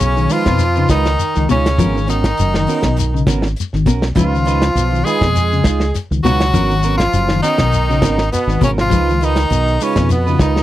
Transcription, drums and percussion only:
0.00 shekere medium
0.17 shekere soft
0.30 open hi-hat medium
0.30 shekere medium
0.46 kick medium
0.46 snare medium
0.46 closed hi-hat soft
0.46 shekere soft
0.59 snare soft
0.59 closed hi-hat medium
0.59 shekere medium
0.75 shekere soft
0.89 kick medium
0.89 snare medium
0.89 closed hi-hat medium
0.89 shekere medium
1.05 snare medium
1.05 shekere soft
1.20 closed hi-hat medium
1.20 shekere medium
1.35 snare soft
1.35 shekere soft
1.49 closed hi-hat medium
1.49 shekere medium
1.66 snare medium
1.66 closed hi-hat medium
1.66 shekere soft
1.78 kick loud
1.78 closed hi-hat medium
1.78 shekere medium
1.97 shekere soft
2.08 snare soft
2.08 closed hi-hat soft
2.08 shekere medium
2.24 kick medium
2.24 snare medium
2.24 closed hi-hat medium
2.24 shekere soft
2.37 closed hi-hat medium
2.37 shekere medium
2.54 snare medium
2.54 shekere soft
2.67 open hi-hat medium
2.67 shekere medium
2.83 kick medium
2.83 snare medium
2.83 closed hi-hat medium
2.83 shekere soft
2.96 snare soft
2.96 closed hi-hat medium
2.96 shekere medium
3.17 shekere soft
3.27 kick medium
3.27 snare medium
3.27 closed hi-hat medium
3.27 shekere medium
3.42 snare medium
3.46 shekere soft
3.56 closed hi-hat medium
3.56 shekere medium
3.73 snare soft
3.73 shekere soft
3.86 kick medium
3.86 snare soft
3.86 closed hi-hat medium
3.86 shekere medium
4.02 snare medium
4.02 shekere soft
4.15 kick medium
4.15 snare soft
4.15 closed hi-hat medium
4.15 shekere medium
4.35 shekere soft
4.45 snare soft
4.45 closed hi-hat medium
4.45 shekere medium
4.62 snare medium
4.62 closed hi-hat medium
4.62 shekere soft
4.76 closed hi-hat medium
4.76 shekere medium
4.95 shekere soft
5.06 open hi-hat medium
5.06 shekere medium
5.21 kick medium
5.21 snare medium
5.21 closed hi-hat soft
5.21 shekere soft
5.35 snare soft
5.35 closed hi-hat medium
5.35 shekere medium
5.52 shekere soft
5.64 kick medium
5.64 snare medium
5.64 closed hi-hat medium
5.64 shekere medium
5.80 snare medium
5.80 shekere soft
5.94 snare soft
5.94 closed hi-hat medium
5.94 shekere medium
6.12 shekere soft
6.24 closed hi-hat medium
6.24 shekere medium
6.40 snare medium
6.40 closed hi-hat medium
6.40 shekere soft
6.53 kick medium
6.53 closed hi-hat medium
6.53 shekere medium
6.71 shekere soft
6.83 snare soft
6.83 closed hi-hat medium
6.83 shekere medium
7.00 kick medium
7.00 snare medium
7.00 closed hi-hat medium
7.00 shekere soft
7.13 closed hi-hat medium
7.13 shekere medium
7.29 snare medium
7.29 shekere soft
7.42 open hi-hat medium
7.42 shekere medium
7.58 kick medium
7.58 snare medium
7.58 closed hi-hat medium
7.58 shekere soft
7.72 closed hi-hat medium
7.72 shekere medium
7.91 shekere soft
8.02 kick medium
8.02 snare medium
8.02 closed hi-hat medium
8.02 shekere medium
8.18 snare medium
8.18 shekere soft
8.32 snare soft
8.32 closed hi-hat medium
8.32 shekere medium
8.48 snare soft
8.48 shekere soft
8.61 kick medium
8.61 closed hi-hat medium
8.61 shekere medium
8.78 snare medium
8.78 shekere soft
8.91 kick medium
8.91 closed hi-hat medium
8.91 shekere medium
9.10 shekere soft
9.21 closed hi-hat medium
9.21 shekere medium
9.36 snare medium
9.36 closed hi-hat medium
9.36 shekere soft
9.50 closed hi-hat medium
9.50 shekere medium
9.68 shekere soft
9.80 open hi-hat medium
9.80 shekere medium
9.96 kick medium
9.96 snare medium
9.96 closed hi-hat soft
9.96 shekere soft
10.09 snare soft
10.09 closed hi-hat medium
10.09 shekere medium
10.27 shekere soft
10.39 kick medium
10.39 snare medium
10.39 closed hi-hat soft
10.39 shekere medium
10.56 snare medium
10.56 shekere soft

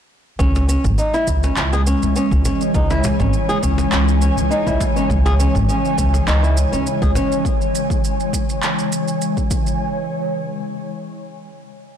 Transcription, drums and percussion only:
0.39 kick loud
0.39 shaker soft
0.55 cajon slap medium
0.55 shaker soft
0.69 shaker medium
0.85 kick loud
0.85 shaker soft
0.98 shaker soft
1.14 shaker soft
1.27 kick medium
1.27 shaker medium
1.43 cajon slap medium
1.43 shaker soft
1.57 clap medium
1.57 shaker soft
1.73 shaker soft
1.87 cajon slap soft
1.87 shaker medium
2.02 shaker soft
2.16 shaker soft
2.31 kick medium
2.31 shaker soft
2.45 cajon bass medium
2.45 shaker medium
2.61 shaker soft
2.75 kick loud
2.75 shaker soft
2.90 cajon slap medium
2.90 shaker soft
3.04 cajon bass medium
3.04 shaker medium
3.20 kick loud
3.20 shaker soft
3.33 shaker soft
3.49 shaker soft
3.63 kick medium
3.63 shaker medium
3.78 cajon slap medium
3.78 shaker soft
3.92 clap medium
3.92 shaker soft
4.08 shaker soft
4.22 shaker medium
4.38 shaker soft
4.51 shaker soft
4.67 kick medium
4.67 shaker soft
4.80 kick loud
4.80 cajon slap medium
4.80 shaker medium
4.97 shaker soft
5.10 kick loud
5.10 shaker soft
5.26 cajon slap medium
5.26 shaker soft
5.40 shaker medium
5.55 kick loud
5.55 shaker soft
5.69 shaker soft
5.85 shaker soft
5.98 kick medium
5.98 shaker medium
6.14 cajon slap medium
6.14 shaker soft
6.28 clap medium
6.28 shaker soft
6.44 shaker soft
6.57 cajon slap soft
6.57 shaker medium
6.73 shaker soft
6.87 shaker soft
7.02 kick medium
7.02 shaker soft
7.15 cajon bass medium
7.15 shaker medium
7.32 shaker soft
7.45 kick loud
7.45 shaker soft
7.61 shaker soft
7.75 shaker medium
7.90 kick loud
7.90 shaker soft
8.04 shaker soft
8.20 shaker soft
8.33 kick medium
8.33 shaker medium
8.49 shaker soft
8.63 clap medium
8.63 shaker soft
8.79 shaker soft
8.92 shaker medium
9.08 shaker soft
9.22 shaker soft
9.37 kick medium
9.37 shaker soft
9.51 kick loud
9.51 shaker medium
9.67 shaker soft

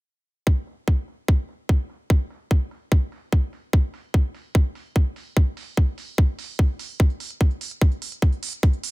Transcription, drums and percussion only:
0.47 kick loud
0.67 open hi-hat loud
0.88 kick loud
1.08 open hi-hat loud
1.28 kick loud
1.49 open hi-hat loud
1.69 kick loud
1.90 open hi-hat loud
2.10 kick loud
2.30 open hi-hat loud
2.51 kick loud
2.71 open hi-hat loud
2.92 kick loud
3.12 open hi-hat loud
3.33 kick loud
3.53 open hi-hat loud
3.73 kick loud
3.94 open hi-hat loud
4.14 kick loud
4.35 open hi-hat loud
4.55 kick loud
4.75 open hi-hat loud
4.96 kick loud
5.16 open hi-hat loud
5.37 kick loud
5.57 open hi-hat loud
5.77 kick loud
5.98 open hi-hat loud
6.18 kick loud
6.39 open hi-hat loud
6.59 kick loud
6.79 open hi-hat loud
7.00 kick loud
7.10 closed hi-hat soft
7.20 open hi-hat loud
7.30 closed hi-hat soft
7.41 kick loud
7.41 closed hi-hat soft
7.51 closed hi-hat soft
7.61 open hi-hat loud
7.71 closed hi-hat soft
7.81 kick loud
7.81 closed hi-hat soft
7.92 closed hi-hat soft
8.02 open hi-hat loud
8.12 closed hi-hat soft
8.22 kick loud
8.22 closed hi-hat soft
8.32 closed hi-hat soft
8.43 open hi-hat loud
8.53 closed hi-hat soft
8.63 kick loud
8.63 closed hi-hat medium
8.73 closed hi-hat soft
8.84 open hi-hat loud

